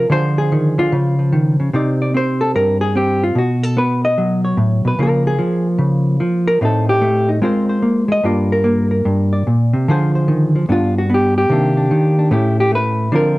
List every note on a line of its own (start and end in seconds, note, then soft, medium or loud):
0.10 0.77 D3 medium
0.10 0.91 F3 soft
0.10 0.78 F4 medium
0.10 0.37 G#4 soft
0.10 0.78 C5 loud
0.38 0.92 G#4 loud
0.52 0.77 D#3 medium
0.78 0.91 D3 medium
0.78 1.73 F4 medium
0.92 1.59 C#3 medium
0.92 1.18 F3 soft
1.19 1.73 F3 soft
1.32 1.58 D#3 medium
1.60 1.73 C#3 medium
1.74 2.54 C3 medium
1.74 2.13 C4 soft
1.74 3.23 D#4 soft
1.74 2.00 D5 soft
2.02 2.14 D5 soft
2.14 2.94 C4 medium
2.14 2.41 C5 medium
2.41 2.54 A4 medium
2.55 3.35 G2 medium
2.55 2.81 A#4 medium
2.81 2.95 G#4 medium
2.95 3.34 C4 medium
2.95 3.22 G4 medium
3.24 3.37 F4 medium
3.35 4.57 B2 medium
3.35 3.63 F#4 medium
3.63 3.77 A4 medium
3.77 4.97 B3 medium
3.77 4.04 B4 medium
4.05 4.44 D#5 medium
4.18 4.97 F#3 medium
4.45 4.85 C#5 soft
4.57 4.84 A2 medium
4.85 4.98 B2 medium
4.85 5.00 B4 medium
4.99 5.39 C#3 medium
4.99 5.37 F3 medium
4.99 6.62 A#3 medium
4.99 5.27 A#4 medium
5.27 5.67 G#4 medium
5.39 6.19 F3 medium
5.79 6.20 C#3 medium
6.20 6.61 F3 medium
6.47 6.61 A#4 medium
6.61 7.41 A2 medium
6.61 7.00 A3 soft
6.61 7.41 C4 soft
6.61 7.28 D#4 medium
6.61 6.89 A4 medium
6.89 7.29 G4 medium
7.01 7.41 A3 medium
7.29 7.41 D#4 soft
7.42 8.07 G#3 medium
7.42 7.82 C4 soft
7.42 8.25 F4 medium
7.42 8.23 A#4 soft
7.42 7.68 C5 medium
7.69 8.10 C5 soft
7.82 8.08 A#3 medium
8.08 8.23 G#3 medium
8.08 8.27 D#5 medium
8.24 9.04 G2 medium
8.24 8.63 A#3 soft
8.24 9.85 F4 medium
8.24 8.51 A#4 medium
8.24 8.52 D5 medium
8.52 8.90 A#4 medium
8.64 9.84 A#3 medium
8.91 9.85 A#4 soft
9.05 9.46 G2 medium
9.33 9.91 D5 soft
9.47 9.73 A#2 medium
9.73 9.87 C3 medium
9.88 10.67 D3 medium
9.88 10.54 F3 medium
9.88 10.68 F4 medium
9.88 10.68 G#4 medium
9.88 10.14 C5 medium
10.15 10.67 C5 medium
10.28 10.54 D#3 medium
10.55 10.69 F3 medium
10.69 11.49 G2 medium
10.69 11.08 B3 medium
10.69 11.48 D4 soft
10.69 10.96 F4 medium
10.98 11.10 F#4 medium
11.10 11.48 B3 medium
11.14 11.37 G4 medium
11.38 12.32 G4 medium
11.50 11.90 C3 medium
11.50 11.90 D#3 medium
11.50 12.31 A#3 medium
11.50 11.76 D4 medium
11.77 12.17 D4 soft
11.91 12.29 D#3 medium
12.19 12.32 D4 soft
12.31 13.10 A2 medium
12.31 12.70 A3 medium
12.31 13.10 C#4 medium
12.31 13.11 E4 medium
12.31 12.58 G4 medium
12.60 12.73 G4 medium
12.72 13.10 A3 medium
12.72 13.14 B4 medium
13.12 13.39 D3 medium
13.12 13.39 F3 medium
13.12 13.39 C4 medium
13.12 13.39 F4 medium
13.12 13.39 A#4 medium